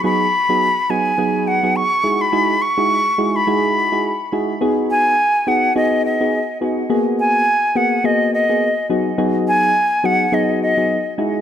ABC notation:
X:1
M:4/4
L:1/16
Q:"Swing 16ths" 1/4=105
K:B
V:1 name="Flute"
b6 g4 f2 c'3 b- | b2 c'4- c' b6- b z2 | z2 g4 f2 d2 d4 z2 | z2 g4 f2 d2 d4 z2 |
z2 g4 f2 d2 d4 z2 |]
V:2 name="Synth keys"
[F,B,DFG] z2 [F,B,DFG] z2 [F,B,DFG] z [F,B,DFG]3 [F,B,DFG] z2 [G,DEFG] z | [G,DEFG] z2 [G,DEFG] z2 [G,DEFG] z [G,DEFG]3 [G,DEFG] z2 [G,DEFG] z | [B,DFG]4 z2 [B,DFG] z [B,DFG]3 [B,DFG] z2 [B,DFG] z | [A,B,FG]4 z2 [A,B,FG] z [A,B,FG]3 [A,B,FG] z2 [F,B,DFG] z |
[F,B,DFG]4 z2 [F,B,DFG] z [F,B,DFG]3 [F,B,DFG] z2 [G,DEFG] z |]